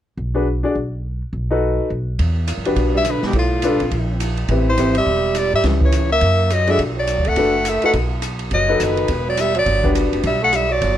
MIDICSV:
0, 0, Header, 1, 7, 480
1, 0, Start_track
1, 0, Key_signature, 1, "minor"
1, 0, Tempo, 287494
1, 1741, Time_signature, 4, 2, 24, 8
1, 18326, End_track
2, 0, Start_track
2, 0, Title_t, "Soprano saxophone"
2, 0, Program_c, 0, 64
2, 4962, Note_on_c, 0, 76, 84
2, 5189, Note_on_c, 0, 71, 69
2, 5214, Note_off_c, 0, 76, 0
2, 5437, Note_off_c, 0, 71, 0
2, 5453, Note_on_c, 0, 67, 67
2, 5600, Note_off_c, 0, 67, 0
2, 5652, Note_on_c, 0, 65, 68
2, 6990, Note_off_c, 0, 65, 0
2, 7839, Note_on_c, 0, 72, 81
2, 8264, Note_off_c, 0, 72, 0
2, 8311, Note_on_c, 0, 76, 89
2, 8989, Note_on_c, 0, 74, 77
2, 9014, Note_off_c, 0, 76, 0
2, 9257, Note_off_c, 0, 74, 0
2, 9273, Note_on_c, 0, 76, 95
2, 9429, Note_off_c, 0, 76, 0
2, 9770, Note_on_c, 0, 73, 68
2, 10189, Note_off_c, 0, 73, 0
2, 10225, Note_on_c, 0, 76, 106
2, 10918, Note_on_c, 0, 75, 80
2, 10943, Note_off_c, 0, 76, 0
2, 11192, Note_on_c, 0, 76, 93
2, 11217, Note_off_c, 0, 75, 0
2, 11360, Note_off_c, 0, 76, 0
2, 11678, Note_on_c, 0, 74, 75
2, 12160, Note_on_c, 0, 78, 91
2, 12185, Note_off_c, 0, 74, 0
2, 12835, Note_on_c, 0, 76, 74
2, 12860, Note_off_c, 0, 78, 0
2, 13099, Note_off_c, 0, 76, 0
2, 13110, Note_on_c, 0, 78, 83
2, 13211, Note_off_c, 0, 78, 0
2, 14255, Note_on_c, 0, 75, 75
2, 14754, Note_on_c, 0, 71, 60
2, 14779, Note_off_c, 0, 75, 0
2, 15498, Note_off_c, 0, 71, 0
2, 15522, Note_on_c, 0, 74, 76
2, 15703, Note_on_c, 0, 76, 84
2, 15728, Note_off_c, 0, 74, 0
2, 15973, Note_off_c, 0, 76, 0
2, 16001, Note_on_c, 0, 74, 81
2, 16599, Note_off_c, 0, 74, 0
2, 17143, Note_on_c, 0, 76, 75
2, 17394, Note_off_c, 0, 76, 0
2, 17427, Note_on_c, 0, 78, 89
2, 17625, Note_on_c, 0, 76, 78
2, 17650, Note_off_c, 0, 78, 0
2, 17904, Note_on_c, 0, 74, 81
2, 17929, Note_off_c, 0, 76, 0
2, 18326, Note_off_c, 0, 74, 0
2, 18326, End_track
3, 0, Start_track
3, 0, Title_t, "Grand piano"
3, 0, Program_c, 1, 0
3, 576, Note_on_c, 1, 62, 52
3, 583, Note_on_c, 1, 68, 50
3, 585, Note_on_c, 1, 66, 48
3, 598, Note_on_c, 1, 71, 57
3, 753, Note_off_c, 1, 62, 0
3, 757, Note_off_c, 1, 68, 0
3, 758, Note_off_c, 1, 66, 0
3, 764, Note_off_c, 1, 71, 0
3, 1056, Note_on_c, 1, 62, 60
3, 1068, Note_on_c, 1, 66, 51
3, 1071, Note_on_c, 1, 68, 52
3, 1084, Note_on_c, 1, 74, 60
3, 1233, Note_off_c, 1, 62, 0
3, 1240, Note_off_c, 1, 66, 0
3, 1241, Note_off_c, 1, 68, 0
3, 1247, Note_off_c, 1, 74, 0
3, 2514, Note_on_c, 1, 63, 58
3, 2523, Note_on_c, 1, 69, 54
3, 2526, Note_on_c, 1, 66, 52
3, 2531, Note_on_c, 1, 71, 61
3, 3144, Note_off_c, 1, 63, 0
3, 3149, Note_off_c, 1, 69, 0
3, 3150, Note_off_c, 1, 66, 0
3, 3152, Note_off_c, 1, 71, 0
3, 4433, Note_on_c, 1, 62, 60
3, 4436, Note_on_c, 1, 66, 57
3, 4442, Note_on_c, 1, 67, 53
3, 4453, Note_on_c, 1, 71, 66
3, 5063, Note_off_c, 1, 62, 0
3, 5065, Note_off_c, 1, 66, 0
3, 5068, Note_off_c, 1, 67, 0
3, 5074, Note_off_c, 1, 71, 0
3, 6072, Note_on_c, 1, 62, 64
3, 6078, Note_on_c, 1, 65, 57
3, 6087, Note_on_c, 1, 69, 57
3, 6089, Note_on_c, 1, 71, 69
3, 6329, Note_off_c, 1, 62, 0
3, 6332, Note_off_c, 1, 65, 0
3, 6337, Note_off_c, 1, 69, 0
3, 6338, Note_off_c, 1, 71, 0
3, 7506, Note_on_c, 1, 60, 48
3, 7523, Note_on_c, 1, 64, 44
3, 7530, Note_on_c, 1, 71, 52
3, 7531, Note_on_c, 1, 67, 46
3, 7766, Note_off_c, 1, 60, 0
3, 7774, Note_off_c, 1, 64, 0
3, 7778, Note_off_c, 1, 67, 0
3, 7778, Note_off_c, 1, 71, 0
3, 7975, Note_on_c, 1, 60, 56
3, 7993, Note_on_c, 1, 64, 47
3, 7993, Note_on_c, 1, 67, 55
3, 7994, Note_on_c, 1, 71, 58
3, 8240, Note_off_c, 1, 60, 0
3, 8249, Note_off_c, 1, 64, 0
3, 8249, Note_off_c, 1, 67, 0
3, 8250, Note_off_c, 1, 71, 0
3, 9417, Note_on_c, 1, 64, 37
3, 9418, Note_on_c, 1, 61, 41
3, 9429, Note_on_c, 1, 67, 37
3, 9436, Note_on_c, 1, 71, 44
3, 10132, Note_off_c, 1, 61, 0
3, 10132, Note_off_c, 1, 64, 0
3, 10138, Note_off_c, 1, 67, 0
3, 10142, Note_off_c, 1, 71, 0
3, 11147, Note_on_c, 1, 62, 53
3, 11147, Note_on_c, 1, 66, 53
3, 11152, Note_on_c, 1, 69, 48
3, 11160, Note_on_c, 1, 74, 63
3, 11318, Note_off_c, 1, 66, 0
3, 11319, Note_off_c, 1, 62, 0
3, 11321, Note_off_c, 1, 69, 0
3, 11325, Note_off_c, 1, 74, 0
3, 12303, Note_on_c, 1, 62, 53
3, 12309, Note_on_c, 1, 66, 52
3, 12315, Note_on_c, 1, 69, 53
3, 12324, Note_on_c, 1, 71, 57
3, 12564, Note_off_c, 1, 62, 0
3, 12567, Note_off_c, 1, 66, 0
3, 12570, Note_off_c, 1, 69, 0
3, 12574, Note_off_c, 1, 71, 0
3, 13080, Note_on_c, 1, 63, 51
3, 13082, Note_on_c, 1, 66, 49
3, 13085, Note_on_c, 1, 69, 47
3, 13093, Note_on_c, 1, 71, 54
3, 13245, Note_off_c, 1, 63, 0
3, 13246, Note_off_c, 1, 66, 0
3, 13247, Note_off_c, 1, 69, 0
3, 13251, Note_off_c, 1, 71, 0
3, 14498, Note_on_c, 1, 63, 63
3, 14507, Note_on_c, 1, 66, 56
3, 14509, Note_on_c, 1, 69, 58
3, 14520, Note_on_c, 1, 71, 73
3, 15135, Note_off_c, 1, 63, 0
3, 15139, Note_off_c, 1, 66, 0
3, 15140, Note_off_c, 1, 69, 0
3, 15146, Note_off_c, 1, 71, 0
3, 16420, Note_on_c, 1, 62, 64
3, 16426, Note_on_c, 1, 66, 55
3, 16438, Note_on_c, 1, 67, 55
3, 16440, Note_on_c, 1, 71, 67
3, 17056, Note_off_c, 1, 62, 0
3, 17059, Note_off_c, 1, 66, 0
3, 17064, Note_off_c, 1, 67, 0
3, 17066, Note_off_c, 1, 71, 0
3, 18326, End_track
4, 0, Start_track
4, 0, Title_t, "Tenor saxophone"
4, 0, Program_c, 2, 66
4, 4893, Note_on_c, 2, 55, 65
4, 5108, Note_on_c, 2, 50, 57
4, 5133, Note_off_c, 2, 55, 0
4, 5384, Note_off_c, 2, 50, 0
4, 5394, Note_on_c, 2, 47, 62
4, 5568, Note_off_c, 2, 47, 0
4, 5584, Note_on_c, 2, 45, 52
4, 6476, Note_off_c, 2, 45, 0
4, 7816, Note_on_c, 2, 52, 66
4, 8251, Note_off_c, 2, 52, 0
4, 8302, Note_on_c, 2, 55, 72
4, 8970, Note_off_c, 2, 55, 0
4, 8970, Note_on_c, 2, 55, 67
4, 9237, Note_off_c, 2, 55, 0
4, 9247, Note_on_c, 2, 55, 79
4, 9415, Note_off_c, 2, 55, 0
4, 9727, Note_on_c, 2, 52, 54
4, 10166, Note_off_c, 2, 52, 0
4, 10209, Note_on_c, 2, 58, 76
4, 10884, Note_on_c, 2, 54, 68
4, 10909, Note_off_c, 2, 58, 0
4, 11158, Note_on_c, 2, 56, 84
4, 11183, Note_off_c, 2, 54, 0
4, 11343, Note_off_c, 2, 56, 0
4, 11628, Note_on_c, 2, 54, 66
4, 12125, Note_on_c, 2, 57, 77
4, 12151, Note_off_c, 2, 54, 0
4, 12810, Note_off_c, 2, 57, 0
4, 12810, Note_on_c, 2, 57, 63
4, 13082, Note_off_c, 2, 57, 0
4, 13092, Note_on_c, 2, 57, 69
4, 13257, Note_off_c, 2, 57, 0
4, 14245, Note_on_c, 2, 54, 61
4, 14707, Note_on_c, 2, 51, 51
4, 14732, Note_off_c, 2, 54, 0
4, 15183, Note_off_c, 2, 51, 0
4, 15496, Note_on_c, 2, 54, 65
4, 15681, Note_on_c, 2, 55, 74
4, 15706, Note_off_c, 2, 54, 0
4, 15938, Note_off_c, 2, 55, 0
4, 15948, Note_on_c, 2, 54, 69
4, 16571, Note_off_c, 2, 54, 0
4, 17124, Note_on_c, 2, 55, 60
4, 17384, Note_off_c, 2, 55, 0
4, 17400, Note_on_c, 2, 57, 73
4, 17591, Note_on_c, 2, 55, 67
4, 17616, Note_off_c, 2, 57, 0
4, 17866, Note_on_c, 2, 54, 62
4, 17891, Note_off_c, 2, 55, 0
4, 18326, Note_off_c, 2, 54, 0
4, 18326, End_track
5, 0, Start_track
5, 0, Title_t, "Upright bass"
5, 0, Program_c, 3, 32
5, 293, Note_on_c, 3, 35, 73
5, 1050, Note_off_c, 3, 35, 0
5, 1259, Note_on_c, 3, 35, 68
5, 2013, Note_off_c, 3, 35, 0
5, 2216, Note_on_c, 3, 35, 72
5, 2971, Note_off_c, 3, 35, 0
5, 3178, Note_on_c, 3, 35, 71
5, 3626, Note_off_c, 3, 35, 0
5, 3660, Note_on_c, 3, 40, 73
5, 4256, Note_off_c, 3, 40, 0
5, 4300, Note_on_c, 3, 42, 59
5, 4449, Note_off_c, 3, 42, 0
5, 4466, Note_on_c, 3, 41, 60
5, 4599, Note_off_c, 3, 41, 0
5, 4609, Note_on_c, 3, 35, 71
5, 5332, Note_off_c, 3, 35, 0
5, 5562, Note_on_c, 3, 35, 79
5, 6289, Note_off_c, 3, 35, 0
5, 6352, Note_on_c, 3, 35, 67
5, 6519, Note_off_c, 3, 35, 0
5, 6529, Note_on_c, 3, 34, 71
5, 7446, Note_off_c, 3, 34, 0
5, 7490, Note_on_c, 3, 33, 78
5, 7941, Note_off_c, 3, 33, 0
5, 7987, Note_on_c, 3, 32, 72
5, 8430, Note_off_c, 3, 32, 0
5, 8452, Note_on_c, 3, 28, 78
5, 9174, Note_off_c, 3, 28, 0
5, 9241, Note_on_c, 3, 44, 58
5, 9401, Note_off_c, 3, 44, 0
5, 9411, Note_on_c, 3, 37, 73
5, 10327, Note_off_c, 3, 37, 0
5, 10380, Note_on_c, 3, 42, 79
5, 11292, Note_off_c, 3, 42, 0
5, 11336, Note_on_c, 3, 35, 73
5, 11933, Note_off_c, 3, 35, 0
5, 11995, Note_on_c, 3, 38, 57
5, 12132, Note_off_c, 3, 38, 0
5, 12142, Note_on_c, 3, 36, 61
5, 12283, Note_off_c, 3, 36, 0
5, 12293, Note_on_c, 3, 30, 71
5, 13014, Note_off_c, 3, 30, 0
5, 13253, Note_on_c, 3, 35, 76
5, 14168, Note_off_c, 3, 35, 0
5, 14208, Note_on_c, 3, 30, 75
5, 14659, Note_off_c, 3, 30, 0
5, 14699, Note_on_c, 3, 30, 69
5, 15145, Note_off_c, 3, 30, 0
5, 15173, Note_on_c, 3, 28, 73
5, 16088, Note_off_c, 3, 28, 0
5, 16126, Note_on_c, 3, 31, 76
5, 16850, Note_off_c, 3, 31, 0
5, 16905, Note_on_c, 3, 29, 60
5, 17082, Note_off_c, 3, 29, 0
5, 17093, Note_on_c, 3, 35, 75
5, 18007, Note_off_c, 3, 35, 0
5, 18060, Note_on_c, 3, 31, 72
5, 18326, Note_off_c, 3, 31, 0
5, 18326, End_track
6, 0, Start_track
6, 0, Title_t, "Muted upright bass strokes"
6, 5390, Note_on_c, 9, 29, 36
6, 5557, Note_off_c, 9, 29, 0
6, 13079, Note_on_c, 9, 29, 37
6, 13246, Note_off_c, 9, 29, 0
6, 18326, End_track
7, 0, Start_track
7, 0, Title_t, "Drums"
7, 3655, Note_on_c, 9, 51, 53
7, 3658, Note_on_c, 9, 36, 29
7, 3822, Note_off_c, 9, 51, 0
7, 3825, Note_off_c, 9, 36, 0
7, 4132, Note_on_c, 9, 44, 50
7, 4132, Note_on_c, 9, 51, 63
7, 4299, Note_off_c, 9, 44, 0
7, 4299, Note_off_c, 9, 51, 0
7, 4427, Note_on_c, 9, 51, 38
7, 4594, Note_off_c, 9, 51, 0
7, 4611, Note_on_c, 9, 51, 52
7, 4613, Note_on_c, 9, 36, 31
7, 4778, Note_off_c, 9, 51, 0
7, 4780, Note_off_c, 9, 36, 0
7, 5085, Note_on_c, 9, 44, 52
7, 5085, Note_on_c, 9, 51, 55
7, 5252, Note_off_c, 9, 44, 0
7, 5252, Note_off_c, 9, 51, 0
7, 5384, Note_on_c, 9, 38, 29
7, 5551, Note_off_c, 9, 38, 0
7, 5561, Note_on_c, 9, 51, 47
7, 5568, Note_on_c, 9, 36, 32
7, 5728, Note_off_c, 9, 51, 0
7, 5735, Note_off_c, 9, 36, 0
7, 6045, Note_on_c, 9, 44, 46
7, 6045, Note_on_c, 9, 51, 60
7, 6212, Note_off_c, 9, 44, 0
7, 6212, Note_off_c, 9, 51, 0
7, 6344, Note_on_c, 9, 51, 41
7, 6511, Note_off_c, 9, 51, 0
7, 6533, Note_on_c, 9, 36, 30
7, 6534, Note_on_c, 9, 51, 46
7, 6700, Note_off_c, 9, 36, 0
7, 6701, Note_off_c, 9, 51, 0
7, 7016, Note_on_c, 9, 44, 57
7, 7016, Note_on_c, 9, 51, 65
7, 7183, Note_off_c, 9, 44, 0
7, 7183, Note_off_c, 9, 51, 0
7, 7301, Note_on_c, 9, 51, 39
7, 7468, Note_off_c, 9, 51, 0
7, 7487, Note_on_c, 9, 51, 49
7, 7494, Note_on_c, 9, 36, 30
7, 7654, Note_off_c, 9, 51, 0
7, 7661, Note_off_c, 9, 36, 0
7, 7973, Note_on_c, 9, 44, 45
7, 7973, Note_on_c, 9, 51, 60
7, 8140, Note_off_c, 9, 44, 0
7, 8140, Note_off_c, 9, 51, 0
7, 8259, Note_on_c, 9, 51, 55
7, 8426, Note_off_c, 9, 51, 0
7, 8457, Note_on_c, 9, 36, 31
7, 8624, Note_off_c, 9, 36, 0
7, 8926, Note_on_c, 9, 44, 56
7, 8926, Note_on_c, 9, 51, 56
7, 9093, Note_off_c, 9, 44, 0
7, 9093, Note_off_c, 9, 51, 0
7, 9410, Note_on_c, 9, 51, 50
7, 9413, Note_on_c, 9, 38, 35
7, 9415, Note_on_c, 9, 36, 33
7, 9576, Note_off_c, 9, 51, 0
7, 9580, Note_off_c, 9, 38, 0
7, 9582, Note_off_c, 9, 36, 0
7, 9707, Note_on_c, 9, 36, 51
7, 9874, Note_off_c, 9, 36, 0
7, 9890, Note_on_c, 9, 44, 50
7, 9890, Note_on_c, 9, 51, 60
7, 10057, Note_off_c, 9, 44, 0
7, 10057, Note_off_c, 9, 51, 0
7, 10370, Note_on_c, 9, 51, 52
7, 10377, Note_on_c, 9, 36, 29
7, 10537, Note_off_c, 9, 51, 0
7, 10544, Note_off_c, 9, 36, 0
7, 10857, Note_on_c, 9, 44, 51
7, 10857, Note_on_c, 9, 51, 58
7, 11024, Note_off_c, 9, 44, 0
7, 11024, Note_off_c, 9, 51, 0
7, 11142, Note_on_c, 9, 51, 39
7, 11309, Note_off_c, 9, 51, 0
7, 11331, Note_on_c, 9, 51, 53
7, 11338, Note_on_c, 9, 36, 29
7, 11498, Note_off_c, 9, 51, 0
7, 11505, Note_off_c, 9, 36, 0
7, 11809, Note_on_c, 9, 44, 53
7, 11809, Note_on_c, 9, 51, 53
7, 11976, Note_off_c, 9, 44, 0
7, 11976, Note_off_c, 9, 51, 0
7, 12099, Note_on_c, 9, 51, 39
7, 12266, Note_off_c, 9, 51, 0
7, 12288, Note_on_c, 9, 51, 53
7, 12297, Note_on_c, 9, 36, 30
7, 12455, Note_off_c, 9, 51, 0
7, 12464, Note_off_c, 9, 36, 0
7, 12771, Note_on_c, 9, 44, 60
7, 12771, Note_on_c, 9, 51, 63
7, 12938, Note_off_c, 9, 44, 0
7, 12938, Note_off_c, 9, 51, 0
7, 13053, Note_on_c, 9, 51, 43
7, 13220, Note_off_c, 9, 51, 0
7, 13246, Note_on_c, 9, 51, 55
7, 13254, Note_on_c, 9, 36, 31
7, 13413, Note_off_c, 9, 51, 0
7, 13421, Note_off_c, 9, 36, 0
7, 13723, Note_on_c, 9, 44, 53
7, 13723, Note_on_c, 9, 51, 58
7, 13890, Note_off_c, 9, 44, 0
7, 13890, Note_off_c, 9, 51, 0
7, 14008, Note_on_c, 9, 51, 40
7, 14175, Note_off_c, 9, 51, 0
7, 14205, Note_on_c, 9, 51, 49
7, 14211, Note_on_c, 9, 36, 30
7, 14372, Note_off_c, 9, 51, 0
7, 14378, Note_off_c, 9, 36, 0
7, 14690, Note_on_c, 9, 44, 61
7, 14690, Note_on_c, 9, 51, 59
7, 14857, Note_off_c, 9, 44, 0
7, 14857, Note_off_c, 9, 51, 0
7, 14980, Note_on_c, 9, 51, 39
7, 15147, Note_off_c, 9, 51, 0
7, 15162, Note_on_c, 9, 51, 59
7, 15170, Note_on_c, 9, 36, 29
7, 15329, Note_off_c, 9, 51, 0
7, 15337, Note_off_c, 9, 36, 0
7, 15649, Note_on_c, 9, 44, 57
7, 15649, Note_on_c, 9, 51, 59
7, 15816, Note_off_c, 9, 44, 0
7, 15816, Note_off_c, 9, 51, 0
7, 15939, Note_on_c, 9, 51, 41
7, 16106, Note_off_c, 9, 51, 0
7, 16131, Note_on_c, 9, 51, 52
7, 16132, Note_on_c, 9, 36, 31
7, 16298, Note_off_c, 9, 51, 0
7, 16299, Note_off_c, 9, 36, 0
7, 16426, Note_on_c, 9, 36, 46
7, 16593, Note_off_c, 9, 36, 0
7, 16617, Note_on_c, 9, 44, 50
7, 16617, Note_on_c, 9, 51, 62
7, 16784, Note_off_c, 9, 44, 0
7, 16784, Note_off_c, 9, 51, 0
7, 16910, Note_on_c, 9, 51, 40
7, 17077, Note_off_c, 9, 51, 0
7, 17088, Note_on_c, 9, 51, 57
7, 17093, Note_on_c, 9, 36, 32
7, 17254, Note_off_c, 9, 51, 0
7, 17260, Note_off_c, 9, 36, 0
7, 17574, Note_on_c, 9, 44, 52
7, 17574, Note_on_c, 9, 51, 58
7, 17741, Note_off_c, 9, 44, 0
7, 17741, Note_off_c, 9, 51, 0
7, 18055, Note_on_c, 9, 36, 30
7, 18058, Note_on_c, 9, 51, 58
7, 18222, Note_off_c, 9, 36, 0
7, 18225, Note_off_c, 9, 51, 0
7, 18326, End_track
0, 0, End_of_file